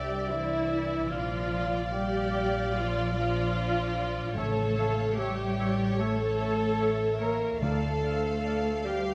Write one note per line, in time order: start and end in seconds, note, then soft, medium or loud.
0.00 1.10 C2 medium
0.00 1.14 C3 medium
0.00 0.30 G3 medium
0.00 0.70 G3 medium
0.00 3.16 D4 medium
0.00 0.30 E4 medium
0.00 0.29 G4 medium
0.00 0.30 G4 medium
0.00 1.07 D5 medium
0.00 0.27 E5 medium
0.00 1.14 E5 medium
0.00 0.29 G5 medium
0.28 1.11 E3 medium
0.28 1.10 E4 medium
0.28 1.11 E4 medium
0.28 1.14 E4 medium
0.28 0.69 C5 medium
0.28 1.10 E5 medium
0.69 1.14 G3 medium
0.69 1.10 E5 medium
1.09 4.32 A#1 medium
1.09 2.75 A#2 medium
1.09 1.93 F3 medium
1.09 1.91 F4 medium
1.09 1.93 F4 medium
1.09 3.51 D5 loud
1.09 4.20 D5 medium
1.09 4.33 D5 medium
1.09 1.90 F5 medium
1.09 4.37 F5 medium
1.53 2.34 F3 medium
1.92 2.73 G3 medium
1.92 3.56 F4 medium
1.92 2.74 G4 medium
1.92 2.75 G4 loud
1.92 2.75 G5 medium
2.35 3.96 F3 medium
2.74 4.40 A#2 medium
2.74 3.15 F3 medium
2.74 3.14 F4 medium
2.74 3.14 F4 loud
2.74 3.13 F5 medium
3.15 4.34 F3 medium
3.15 4.41 D4 soft
3.15 4.34 F4 medium
3.15 4.34 F4 loud
3.15 4.34 F5 medium
3.56 4.40 F4 medium
3.56 4.35 D5 medium
3.98 4.40 F3 medium
4.36 7.58 A1 medium
4.36 5.55 A2 medium
4.36 7.66 C#3 medium
4.36 5.16 A3 medium
4.36 5.17 A4 loud
4.36 5.17 A4 medium
4.36 4.77 C#5 medium
4.36 7.58 C#5 medium
4.36 4.53 C#5 medium
4.36 4.54 E5 medium
4.36 5.18 A5 medium
4.77 5.58 E3 soft
4.77 4.94 C#5 medium
4.77 4.95 E5 medium
4.77 5.18 F5 medium
5.17 6.00 G3 medium
5.17 5.99 G4 medium
5.17 6.00 G4 medium
5.17 5.35 C#5 medium
5.17 5.59 E5 medium
5.17 5.35 E5 medium
5.17 5.99 G5 medium
5.59 7.21 E3 medium
5.59 5.75 C#5 medium
5.59 6.00 D5 medium
5.59 5.76 E5 medium
5.99 7.22 A3 medium
5.99 7.21 A4 loud
5.99 6.15 C#5 medium
5.99 6.80 C#5 medium
5.99 6.17 E5 medium
5.99 6.92 A5 medium
6.40 7.66 C#4 soft
6.40 6.57 C#5 medium
6.40 6.56 E5 medium
6.80 6.96 C#5 medium
6.80 6.97 E5 medium
6.80 7.62 E5 medium
7.21 7.66 E3 medium
7.21 7.62 A#3 medium
7.21 7.62 A#4 medium
7.21 7.37 C#5 medium
7.21 7.38 E5 soft
7.21 7.61 A#5 medium
7.61 9.14 D2 medium
7.61 8.81 D3 medium
7.61 9.14 D3 medium
7.61 8.83 A3 medium
7.61 8.68 A4 medium
7.61 8.82 A4 loud
7.61 7.77 D5 medium
7.61 8.03 D5 medium
7.61 9.14 F5 medium
7.61 7.79 F5 medium
7.61 8.86 A5 medium
8.03 8.85 A3 soft
8.03 8.44 C5 medium
8.03 8.19 D5 medium
8.03 8.22 F5 medium
8.44 9.14 A4 soft
8.44 8.60 D5 medium
8.44 8.86 D5 medium
8.44 8.63 F5 medium
8.85 9.14 G3 medium
8.85 9.14 A3 medium
8.85 9.14 G4 medium
8.85 9.14 C5 medium
8.85 9.01 D5 medium
8.85 9.03 F5 medium
8.85 9.14 G5 medium